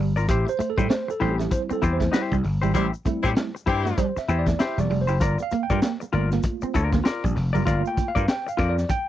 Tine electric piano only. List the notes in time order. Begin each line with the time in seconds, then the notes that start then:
0.29 G4
0.49 C5
0.70 A4
0.90 C5
1.11 A4
1.20 G3 C4 E4
1.32 G4
1.52 C5
1.73 A4
1.93 C5
2.12 G3 C4 E4
3.05 G3 C4 E4
3.98 C5
4.18 E5
4.39 D5
4.60 E5
4.80 D5
5.01 C5
5.22 D5
5.43 F5
5.63 G5
6.13 A3 A#3 F4
7.66 A3 A#3 F4 F5
7.87 G5
8.08 F5
8.28 G5
8.49 F5
8.70 D5
8.90 G5